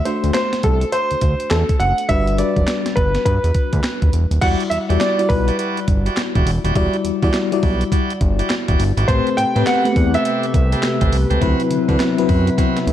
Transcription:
Already playing: fm electric piano A3 D4 F#4 C5
0.05 fm electric piano A3 D4 F#4 C5, grand piano C5, closed hi-hat
0.24 analog synth bass D2, closed hi-hat
0.34 grand piano C5, snare, clap, closed hi-hat
0.53 snare, closed hi-hat
0.63 analog synth bass C2, grand piano A4, kick, closed hi-hat
0.81 closed hi-hat
0.92 grand piano C5, closed hi-hat
1.11 analog synth bass D2, closed hi-hat
1.21 analog synth bass D2, kick, closed hi-hat
1.40 closed hi-hat
1.50 analog synth bass E2, grand piano A4, snare, clap, closed hi-hat
1.69 kick, closed hi-hat
1.80 analog synth bass F#1, grand piano F#5, closed hi-hat
1.98 closed hi-hat
2.09 analog synth bass G1, fm electric piano G3 D4 F#4 B4, grand piano E5, kick, closed hi-hat
2.27 closed hi-hat
2.38 fm electric piano G3 D4 F#4 B4, grand piano D5, closed hi-hat
2.56 analog synth bass F#1, kick, closed hi-hat
2.67 snare, clap, closed hi-hat
2.86 snare, closed hi-hat
2.96 analog synth bass G1, grand piano B4, kick, closed hi-hat
3.15 snare, closed hi-hat
3.25 analog synth bass G2, grand piano B4, kick, closed hi-hat
3.44 analog synth bass E2, closed hi-hat
3.54 kick, closed hi-hat
3.73 analog synth bass D2, kick, closed hi-hat
3.84 snare, clap, closed hi-hat
4.02 analog synth bass D#1, kick, closed hi-hat
4.13 analog synth bass E1, closed hi-hat
4.31 analog synth bass D#1, closed hi-hat
4.41 analog synth bass E1, fm electric piano G3 E4 F#4 D5, tonewheel organ E4 F#4 G4 D5, grand piano F#5, kick, closed hi-hat, crash
4.60 closed hi-hat
4.70 analog synth bass E2, grand piano E5, closed hi-hat
4.89 analog synth bass E2, fm electric piano G3 E4 F#4 D5, tonewheel organ E4 F#4 G4 D5, closed hi-hat
5.00 tonewheel organ E4 F#4 G4 D5, grand piano D5, snare, clap, closed hi-hat
5.19 fm electric piano G3 E4 F#4 D5, closed hi-hat
5.29 analog synth bass B1, grand piano B4, kick, open hi-hat
5.47 tonewheel organ E4 F#4 G4 D5, closed hi-hat
5.58 tonewheel organ E4 F#4 G4 D5, closed hi-hat
5.77 closed hi-hat
5.88 analog synth bass G1, kick, closed hi-hat
6.06 tonewheel organ E4 F#4 G4 D5, closed hi-hat
6.17 snare, clap, closed hi-hat
6.35 analog synth bass E1, tonewheel organ E4 F#4 G4 D5, kick, closed hi-hat
6.46 analog synth bass E1, open hi-hat
6.64 analog synth bass D#1, tonewheel organ E4 F#4 G4 D5, closed hi-hat
6.75 analog synth bass E1, fm electric piano G3 E4 F#4 D5, tonewheel organ E4 F#4 G4 D5, kick, closed hi-hat
6.93 closed hi-hat
7.05 analog synth bass E2, closed hi-hat
7.22 analog synth bass E2, fm electric piano G3 E4 F#4 D5, tonewheel organ E4 F#4 G4 D5, kick, closed hi-hat
7.33 snare, clap, closed hi-hat
7.52 fm electric piano G3 E4 F#4 D5, closed hi-hat
7.63 analog synth bass B1, tonewheel organ E4 F#4 G4 D5, kick, open hi-hat
7.81 closed hi-hat
7.92 tonewheel organ E4 F#4 G4 D5, kick, closed hi-hat
8.10 closed hi-hat
8.21 analog synth bass G1, kick, closed hi-hat
8.39 tonewheel organ E4 F#4 G4 D5, closed hi-hat
8.50 snare, clap, closed hi-hat
8.68 analog synth bass E1, tonewheel organ E4 F#4 G4 D5, kick, closed hi-hat
8.80 analog synth bass G1, open hi-hat
8.97 analog synth bass G#1, tonewheel organ E4 F#4 G4 D5, closed hi-hat
9.07 analog synth bass A1, analog synth pad C3 A3 G4 B4, fm electric piano A3 C4 G4 B4, tonewheel organ C4 G4 A4 B4, grand piano C5, kick, closed hi-hat
9.27 closed hi-hat
9.37 analog synth bass A2, grand piano G5, closed hi-hat
9.55 analog synth bass A2, fm electric piano A3 C4 G4 B4, tonewheel organ C4 G4 A4 B4, closed hi-hat
9.66 tonewheel organ C4 G4 A4 B4, grand piano F#5, snare, clap, closed hi-hat
9.85 fm electric piano A3 B3 G4 B4, closed hi-hat
9.91 fm electric piano C4
9.96 analog synth bass E2, kick, open hi-hat
10.14 tonewheel organ C4 G4 A4 B4, grand piano E5, closed hi-hat
10.25 tonewheel organ C4 G4 A4 B4, closed hi-hat
10.43 closed hi-hat
10.54 analog synth bass C2, kick, closed hi-hat
10.72 tonewheel organ C4 G4 A4 B4, closed hi-hat
10.83 snare, clap, closed hi-hat
11.01 analog synth bass A1, tonewheel organ C4 G4 A4 B4, kick, closed hi-hat
11.13 analog synth bass C2, open hi-hat
11.30 analog synth bass C#2, tonewheel organ C4 G4 A4 B4, closed hi-hat
11.41 analog synth bass D2, analog synth pad F#3 E4, fm electric piano F#3 C4 E4 B4, tonewheel organ C4 E4 F#4 B4, kick, closed hi-hat
11.60 closed hi-hat
11.71 analog synth bass D3, closed hi-hat
11.88 analog synth bass D3, fm electric piano F#3 C4 E4 B4, tonewheel organ C4 E4 F#4 B4, kick, closed hi-hat
12.00 snare, clap, closed hi-hat
12.18 fm electric piano F#3 C4 E4 B4, closed hi-hat
12.28 analog synth bass F#2, tonewheel organ C4 E4 F#4 B4, kick, open hi-hat
12.47 closed hi-hat
12.58 tonewheel organ C4 E4 F#4 B4, kick, snare, closed hi-hat
12.77 snare, closed hi-hat
12.87 analog synth bass D2, closed hi-hat

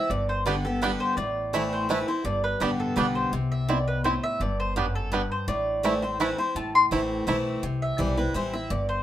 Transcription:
Already playing: steel-string acoustic guitar C4
0.10 upright bass G1, steel-string acoustic guitar G2, mandolin D5
0.29 mandolin C5
0.46 steel-string acoustic guitar D3 G3 B3 G4, five-string banjo B3 D4 G4, mandolin B4
0.65 steel-string acoustic guitar B3 G4, mandolin A4
0.81 steel-string acoustic guitar D3 G3 B3 G4, five-string banjo B3 D4 G4, mandolin B4
1.00 mandolin C5
1.17 upright bass A1, steel-string acoustic guitar A2, mandolin D5
1.53 steel-string acoustic guitar E3 A3 C4 E4, five-string banjo A3 E4
1.73 mandolin C5
1.89 steel-string acoustic guitar E3 A3 C4 E4, five-string banjo A3 E4, mandolin B4
2.08 steel-string acoustic guitar C4 E4, mandolin C5
2.24 upright bass G1, steel-string acoustic guitar G2, mandolin D5
2.44 mandolin B4
2.60 upright bass A1, steel-string acoustic guitar D3 G3 B3 G4, five-string banjo B3 D4 G4, mandolin G4
2.80 mandolin A4
2.96 upright bass B1, steel-string acoustic guitar D3 G3 B3 G4, five-string banjo B3 D4 G4, mandolin B4
3.15 mandolin C5
3.32 upright bass C2, steel-string acoustic guitar C3
3.52 mandolin E5
3.69 steel-string acoustic guitar B2, five-string banjo C4 E4, mandolin D5
3.88 mandolin B4
4.04 steel-string acoustic guitar A2, five-string banjo C4 E4, mandolin C5
4.23 mandolin E5
4.40 upright bass G1, steel-string acoustic guitar G2, mandolin D5
4.60 mandolin C5
4.76 steel-string acoustic guitar F#2, five-string banjo B3 D4 G4, mandolin B4
4.95 mandolin A4
5.12 steel-string acoustic guitar G2, five-string banjo B3 D4 G4, mandolin B4
5.32 mandolin C5
5.48 upright bass A1, steel-string acoustic guitar A2, mandolin D5
5.83 steel-string acoustic guitar E3 A3 C4 E4, five-string banjo A3 E4
6.02 steel-string acoustic guitar C4 E4, mandolin C5
6.20 steel-string acoustic guitar E3 A3 C4 E4, five-string banjo A3 E4, mandolin B4
6.38 steel-string acoustic guitar C4 E4, mandolin C5
6.55 upright bass A1, steel-string acoustic guitar A2, mandolin A5
6.75 mandolin C6
6.91 upright bass A1, steel-string acoustic guitar E3 A3 C4 E4, five-string banjo A3 E4
7.27 upright bass B1, steel-string acoustic guitar E3 A3 C4 E4, five-string banjo A3 E4
7.63 upright bass C2, steel-string acoustic guitar C3
7.82 mandolin E5
7.98 upright bass B1, steel-string acoustic guitar E3 G3 C4 E4, mandolin D5
8.17 steel-string acoustic guitar C4 E4, mandolin B4
8.34 upright bass A1, steel-string acoustic guitar E3 G3 C4 E4, mandolin C5
8.53 steel-string acoustic guitar C4 E4, mandolin E5
8.70 upright bass G1, steel-string acoustic guitar G2, mandolin D5
8.89 mandolin C5

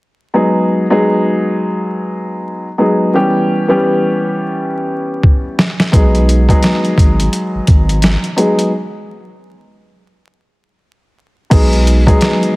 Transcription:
0.34 grand piano F#3 G#3 B3 D#4 G#4
0.90 grand piano F#3 G#3 B3 D#4 G#4
2.78 grand piano F#3 G#3 B3 D#4 G#4
3.14 grand piano E3 G3 B3 C#4 G4
3.68 grand piano E3 G3 B3 C#4 G4
5.23 kick
5.59 snare
5.80 snare
5.92 sub bass B1, grand piano F#3 G#3 B3 D#4 G#4, kick, closed hi-hat
6.15 closed hi-hat
6.29 closed hi-hat
6.48 grand piano F#3 G#3 B3 D#4 G#4, kick, closed hi-hat
6.63 snare, closed hi-hat
6.85 closed hi-hat
6.98 sub bass G#1, kick, closed hi-hat
7.20 closed hi-hat
7.33 closed hi-hat
7.54 sub bass G#1
7.67 sub bass G#1, kick, closed hi-hat
7.89 closed hi-hat
8.02 snare, closed hi-hat
8.24 closed hi-hat
8.36 grand piano F#3 G#3 B3 D#4 G#4, closed hi-hat
8.59 closed hi-hat
11.50 sub bass B1, grand piano F#3 G#3 B3 D#4 G#4, kick, closed hi-hat, crash
11.73 closed hi-hat
11.87 closed hi-hat
12.07 grand piano F#3 G#3 B3 D#4 G#4, kick, closed hi-hat
12.21 snare, closed hi-hat
12.43 closed hi-hat

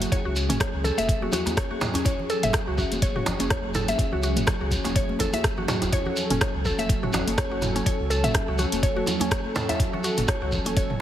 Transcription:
Already playing: analog synth pad F#3 C#4 G#4
0.00 closed hi-hat, high conga, shekere
0.12 synth pluck C#5, kick, closed hi-hat, djembe tone, shekere
0.25 sub bass C#2, synth pluck F#4
0.36 closed hi-hat, shekere
0.49 sub bass F#1, synth pluck C#4, closed hi-hat, mid tom, high conga, shekere
0.60 synth pluck C#5, kick, cross-stick, closed hi-hat, djembe slap
0.74 sub bass C#2
0.84 synth pluck A4, closed hi-hat, low conga, shekere
0.98 sub bass E1, synth pluck E5, closed hi-hat, high conga, shekere
1.09 kick, closed hi-hat, shekere
1.22 synth pluck F#4, high conga
1.32 synth pluck F#4, closed hi-hat, djembe tone, low conga, shekere
1.46 closed hi-hat, djembe tone, high conga, shekere
1.57 synth pluck C#5, kick, cross-stick, closed hi-hat
1.71 synth pluck F#4, high conga
1.81 closed hi-hat, mid tom, djembe slap, shekere
1.94 synth pluck C#4, closed hi-hat, djembe tone, shekere
2.05 sub bass F#1, synth pluck C#5, kick, closed hi-hat, djembe tone, shekere
2.19 low conga
2.30 synth pluck A4, closed hi-hat, shekere
2.43 sub bass F#1, synth pluck E5, closed hi-hat, mid tom, high conga, shekere
2.53 kick, cross-stick, closed hi-hat, djembe slap
2.67 sub bass C#2, synth pluck F#4
2.78 synth pluck F#4, kick, low conga, shekere
2.92 sub bass E1, closed hi-hat, high conga, shekere
3.02 synth pluck C#5, kick, closed hi-hat, shekere
3.16 synth pluck F#4, mid tom
3.26 sub bass F#1, closed hi-hat, djembe slap, low conga, shekere
3.39 sub bass F#1, synth pluck C#4, closed hi-hat, high conga, shekere
3.50 synth pluck C#5, kick, cross-stick, closed hi-hat, djembe tone
3.64 high conga
3.74 synth pluck A4, closed hi-hat, mid tom, djembe tone, shekere
3.88 synth pluck E5, closed hi-hat, high conga, shekere
3.98 kick, closed hi-hat, djembe tone, shekere
4.12 sub bass C#2, synth pluck F#4, low conga
4.23 synth pluck F#4, closed hi-hat, shekere
4.36 sub bass F#1, closed hi-hat, mid tom, high conga, shekere
4.47 synth pluck C#5, kick, cross-stick, closed hi-hat, djembe slap, shekere
4.61 sub bass C#2, synth pluck F#4
4.71 kick, closed hi-hat, low conga, shekere
4.84 sub bass E1, synth pluck C#4, closed hi-hat, djembe slap, high conga, shekere
4.95 synth pluck C#5, kick, closed hi-hat, shekere
5.09 high conga
5.19 synth pluck A4, kick, closed hi-hat, djembe tone, low conga, shekere
5.33 synth pluck E5, closed hi-hat, high conga, djembe tone, shekere
5.44 kick, cross-stick, closed hi-hat, shekere
5.57 sub bass F#1, synth pluck F#4, high conga, low conga
5.68 synth pluck F#4, closed hi-hat, mid tom, djembe slap, shekere
5.82 sub bass F#1, closed hi-hat, djembe tone, shekere
5.92 sub bass F#1, analog synth pad A4, synth pluck C#5, kick, closed hi-hat, djembe tone, shekere
6.06 synth pluck F#4, low conga
6.16 closed hi-hat, shekere
6.30 sub bass F#1, synth pluck C#4, closed hi-hat, mid tom, high conga, shekere
6.41 synth pluck C#5, kick, cross-stick, closed hi-hat, djembe slap, shekere
6.54 sub bass C#2
6.65 synth pluck A4, kick, low conga, shekere
6.78 sub bass E1, synth pluck E5, closed hi-hat, high conga, shekere
6.89 kick, closed hi-hat, shekere
7.03 synth pluck F#4, mid tom
7.13 sub bass F#1, synth pluck F#4, closed hi-hat, djembe slap, low conga, shekere
7.27 sub bass F#1, closed hi-hat, high conga, shekere
7.38 synth pluck C#5, kick, cross-stick, closed hi-hat, djembe tone
7.51 synth pluck F#4, high conga
7.62 closed hi-hat, mid tom, djembe tone, shekere
7.75 synth pluck C#4, closed hi-hat, high conga, shekere
7.86 synth pluck C#5, kick, closed hi-hat, djembe tone, shekere
8.00 sub bass C#2
8.10 synth pluck A4, closed hi-hat, shekere
8.24 sub bass F#1, synth pluck E5, closed hi-hat, mid tom, high conga, shekere
8.34 kick, cross-stick, closed hi-hat, djembe slap, shekere
8.48 sub bass C#2, synth pluck F#4
8.58 synth pluck F#4, closed hi-hat, low conga, shekere
8.72 sub bass E1, closed hi-hat, high conga, shekere
8.83 synth pluck C#5, kick, closed hi-hat, shekere
8.97 synth pluck F#4, high conga
9.06 closed hi-hat, djembe tone, low conga, shekere
9.20 synth pluck C#4, closed hi-hat, djembe tone, high conga, shekere
9.31 synth pluck C#5, kick, cross-stick, closed hi-hat, shekere
9.45 high conga
9.55 synth pluck A4, closed hi-hat, mid tom, djembe slap, shekere
9.69 synth pluck E5, closed hi-hat, djembe tone, shekere
9.79 sub bass F#1, kick, closed hi-hat, djembe tone, shekere
9.93 synth pluck F#4, low conga
10.04 synth pluck F#4, closed hi-hat, shekere
10.17 sub bass F#1, closed hi-hat, mid tom, high conga, shekere
10.27 synth pluck C#5, kick, cross-stick, closed hi-hat, djembe slap, shekere
10.41 sub bass C#2, synth pluck F#4
10.52 kick, low conga, shekere
10.65 sub bass E1, synth pluck C#4, closed hi-hat, high conga, shekere
10.77 synth pluck C#5, kick, closed hi-hat, shekere
10.90 mid tom

